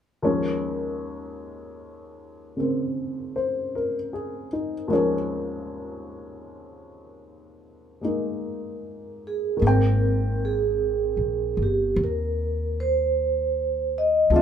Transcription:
0.22 D#2 D#3 F3 G#3 C#4
2.57 C#3 D#3 C4
3.36 C5
3.75 A#4
4.13 G#4
4.53 D#4
4.88 D#2 D#3 F3 G#3
4.93 C#4
8.01 G#3 A#3 D#4
9.27 G#4
9.57 D#3 G#3
9.62 G#1 A#3 C4
9.67 A#4 G5
10.45 G#4
11.17 A#1
11.57 G1
11.63 G4
11.96 D#2
12.04 A#4
12.80 C5
13.98 D#5
14.30 D2 F3 G#3 C4
14.35 D4 F4 E5

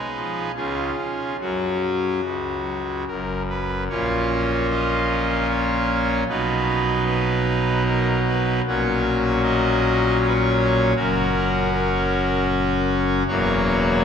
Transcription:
Already playing: D#4 G#4 B4
0.14 F3
0.55 C#2 C#3 C#4 F4 G#4
0.98 C#4
1.40 F#2 F#3 C#4 F#4
2.23 C#2 C#3
3.07 F#1 F#2 A#4
3.49 B4
3.89 A#1 A#2 A#3 C#4 F4 C#5
4.71 D#5
5.48 C#5
6.28 B1 B2 F#3 D#4 B4
7.06 B4
7.86 A#4
8.28 B4
8.66 A#1 A#2 F#3 C#4 F#4 C#5
9.43 D#5
10.21 C#5
10.28 B4
10.33 C#5
10.95 F#1 F#2 F#3 C#4 F#4 A#4
11.73 A#4
13.27 E1 E2 F#3 A#3 F#4 C#5

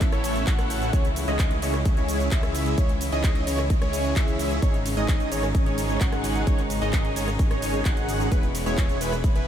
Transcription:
Already playing: A1 C#3 E3 B3 E4
0.01 kick, clap, closed hi-hat, shaker
0.12 A1 A3 C#4 E4 A4 C#5, cross-stick, closed hi-hat, shaker
0.24 open hi-hat, ride, shaker
0.36 closed hi-hat, shaker
0.47 A1 A3 C#4 E4 A4 F#5, kick, clap, closed hi-hat, shaker
0.59 cross-stick, closed hi-hat, shaker
0.70 open hi-hat, ride, shaker
0.82 closed hi-hat, shaker
0.93 C#2 C#3 E3 G#3 C#4 E4 G#4 C#5, kick, closed hi-hat, shaker
1.05 closed hi-hat, shaker
1.16 open hi-hat, ride, shaker
1.28 C#2 G#3 C#4 E4 G#4 D#5, closed hi-hat, shaker
1.39 kick, clap, closed hi-hat, shaker
1.51 closed hi-hat, shaker
1.62 C#2 G#3 C#4 E4 G#4 C#5, open hi-hat, ride, shaker
1.74 cross-stick, closed hi-hat, shaker
1.85 kick, closed hi-hat, shaker
1.97 C#2 G#3 C#4 E4 G#4 C#5, closed hi-hat, shaker
2.08 open hi-hat, ride, shaker
2.20 closed hi-hat, shaker
2.31 C#2 G#3 C#4 E4 G#4 E5, kick, clap, closed hi-hat, shaker
2.43 cross-stick, closed hi-hat, shaker
2.55 open hi-hat, ride, shaker
2.66 closed hi-hat, shaker
2.78 C#2 C#4 C#5, kick, closed hi-hat, shaker
2.89 closed hi-hat, shaker
3.01 open hi-hat, ride, shaker
3.12 C#2 G#3 C#4 E4 G#4 D#5, closed hi-hat, shaker
3.24 kick, clap, closed hi-hat, shaker
3.35 closed hi-hat, shaker
3.47 C#2 G#3 C#4 E4 G#4 C#5, open hi-hat, ride, shaker
3.59 cross-stick, shaker
3.70 kick, closed hi-hat, shaker
3.82 C#2 G#3 C#4 E4 G#4 C#5, cross-stick, closed hi-hat, shaker
3.93 open hi-hat, ride, shaker
4.05 closed hi-hat, shaker
4.16 C#2 G#3 C#4 E4 G#4 E5, kick, clap, closed hi-hat, shaker
4.28 closed hi-hat, shaker
4.39 open hi-hat, ride, shaker
4.51 closed hi-hat, shaker
4.62 G#1 D#3 G#3 C#4 D#4 G#4 C#5, kick, closed hi-hat, shaker
4.74 closed hi-hat, shaker
4.86 open hi-hat, ride, shaker
4.97 G#1 G#3 C#4 D#4 G#4 D#5, closed hi-hat, shaker
5.08 kick, clap, closed hi-hat, shaker
5.20 closed hi-hat, shaker
5.32 G#1 G#3 C#4 D#4 G#4 C#5, open hi-hat, ride, shaker
5.43 cross-stick, shaker
5.55 kick, closed hi-hat, shaker
5.66 G#1 G#3 C#4 D#4 G#4 C#5, closed hi-hat, shaker
5.78 open hi-hat, ride, shaker
5.89 closed hi-hat, shaker
6.01 G#1 G#3 C#4 D#4 G#4 F#5, kick, clap, closed hi-hat, shaker
6.12 cross-stick, closed hi-hat, shaker
6.24 open hi-hat, ride, shaker
6.36 closed hi-hat, shaker
6.47 G#1 G#3 C#4 G#4 C#5, kick, closed hi-hat, shaker
6.59 closed hi-hat, shaker
6.70 open hi-hat, ride, shaker
6.82 G#1 G#3 C#4 D#4 G#4 D#5, closed hi-hat, shaker
6.93 kick, clap, closed hi-hat, shaker
7.05 closed hi-hat, shaker
7.16 G#1 G#3 C#4 D#4 G#4 C#5, open hi-hat, ride, shaker
7.28 cross-stick, closed hi-hat, shaker
7.39 kick, closed hi-hat, shaker
7.51 G#1 G#3 C#4 D#4 G#4 C#5, cross-stick, closed hi-hat, shaker
7.62 open hi-hat, ride, shaker
7.74 closed hi-hat, shaker
7.85 G#1 G#3 C#4 D#4 G#4 F#5, kick, clap, closed hi-hat, shaker
7.97 closed hi-hat, shaker
8.09 open hi-hat, ride, shaker
8.20 closed hi-hat, shaker
8.31 E1 B2 E3 G#3 B3 E4 G#4 B4, kick, closed hi-hat, shaker
8.43 closed hi-hat, shaker
8.55 open hi-hat, ride, shaker
8.66 E1 G#3 B3 E4 G#4 C#5, closed hi-hat, shaker
8.78 kick, clap, closed hi-hat, shaker
8.89 closed hi-hat, shaker
9.01 E1 G#3 B3 E4 G#4 B4, open hi-hat, ride, shaker
9.12 cross-stick, closed hi-hat, shaker
9.24 kick, closed hi-hat, shaker
9.35 E1 G#3 B3 E4 G#4 B4, closed hi-hat, shaker

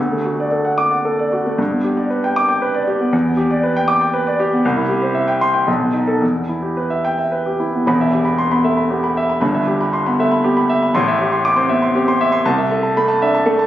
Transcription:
0.00 D2
0.12 A3
0.25 F#4
0.40 D5
0.52 A4
0.65 F#5
0.78 D6
0.91 F#5
1.05 A4
1.19 D5
1.33 F#4
1.46 A3
1.58 G2
1.72 B3
1.84 G4
1.97 D5
2.10 B4
2.24 G5
2.36 D6
2.49 G5
2.62 B4
2.74 D5
2.87 G4
3.00 B3
3.13 E2
3.25 B3
3.37 G4
3.51 D5
3.63 B4
3.77 G5
3.88 D6
4.01 G5
4.14 B4
4.27 D5
4.40 G4
4.53 B3
4.65 C2
4.77 E4
4.89 G4
5.02 C5
5.15 E5
5.28 G5
5.41 C6
5.54 G5
5.67 B1
5.80 B3
5.94 D#4
6.07 A4
6.22 E2
6.35 B3
6.49 E4
6.62 G4
6.77 B4
6.90 E5
7.05 G5
7.19 E5
7.32 B4
7.46 G4
7.60 E4
7.74 B3
7.86 E1 E2 B5
8.01 E5
8.13 G4
8.25 B5
8.38 C6
8.51 B3 B5
8.64 A3 E5
8.77 B5
8.90 B3 G4
9.04 B5
9.17 E5
9.29 B5
9.41 G1 G2 B5
9.54 E5
9.68 G4
9.81 B5
9.93 C6
10.06 B3 B5
10.20 A3 E5
10.31 B5
10.44 B3 G4
10.57 B5
10.69 E5
10.83 B5
10.94 A1 A2 C6
11.08 E5
11.20 G4
11.32 C6
11.45 D6
11.56 C4 C6
11.69 B3 E5
11.82 C6
11.95 C4 G4
12.08 C6
12.21 E5
12.32 C6
12.45 C2 A5
12.58 E5
12.71 A4
12.83 A5
12.97 A3 B5
13.08 A5
13.22 D4 E5
13.35 A5
13.46 A3 A4
13.59 A5

